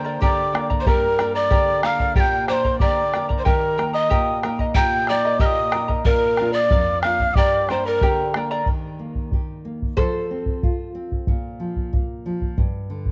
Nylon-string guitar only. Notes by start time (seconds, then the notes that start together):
Already playing: D3 A#3 D4 G4
0.21 D3
0.54 A#3 D4 G4
0.86 G2
1.19 A#3 D4 G4
1.52 D3
1.83 A#3 D4 G4
2.17 A#2
2.49 A#3 D4 G4
2.82 D3
3.14 A#3 D4 G4
3.47 D#3
3.79 A#3 D#4 G4
4.11 A#2
4.44 A#3 D#4 G4
4.77 A#2
5.10 A#3 D#4 G4
5.43 A#2
5.74 A#3 D#4 G4
6.08 A#2
6.40 A#3 D4 F4
6.73 F2
7.04 A#3 D4 F4
7.37 G2
7.70 A#3 D4 G4
8.02 D3
8.35 A#3 D4 G4
8.67 D#3
8.99 A#3
9.33 G4
9.65 A#3
9.98 F3
10.31 C4
10.63 F4
10.95 C4
11.28 A#2
11.60 F3
11.93 A#3
12.26 F3
12.58 G2
12.90 D3